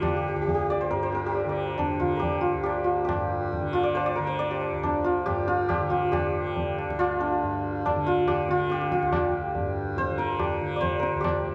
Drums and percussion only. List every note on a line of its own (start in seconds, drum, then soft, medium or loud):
0.03 tabla na loud
0.03 tabla ge medium
0.47 tabla tin medium
0.47 tabla ge medium
0.91 tabla te medium
1.12 tabla te medium
1.35 tabla tin medium
1.78 tabla na medium
1.78 tabla ge medium
2.01 tabla ge medium
2.23 tabla tin medium
2.23 tabla ge medium
2.66 tabla na medium
3.09 tabla na loud
3.09 tabla ge medium
3.53 tabla tin medium
3.53 tabla ge medium
3.75 tabla na medium
3.97 tabla na medium
4.41 tabla tin medium
4.61 tabla na medium
4.83 tabla na medium
4.83 tabla ge medium
5.26 tabla na medium
5.26 tabla ge medium
5.48 tabla te medium
5.70 tabla na medium
5.70 tabla ge medium
5.92 tabla ge medium
6.13 tabla na loud
6.13 tabla ge medium
6.56 tabla tin medium
6.56 tabla ge medium
6.79 tabla na medium
6.90 tabla ke medium
7.01 tabla na medium
7.43 tabla tin medium
7.86 tabla na medium
7.86 tabla ge medium
8.28 tabla na medium
8.28 tabla ge medium
8.49 tabla te medium
8.70 tabla te medium
8.81 tabla te medium
8.92 tabla ke medium
9.03 tabla te medium
9.13 tabla na loud
9.13 tabla ge medium
9.55 tabla tin medium
9.55 tabla ge medium
9.97 tabla tin medium
9.97 tabla ge medium
10.19 tabla te medium
10.39 tabla na medium
10.39 tabla ge medium
10.82 tabla tin medium
10.82 tabla ge medium
11.03 tabla te medium
11.24 tabla na loud
11.24 tabla ge medium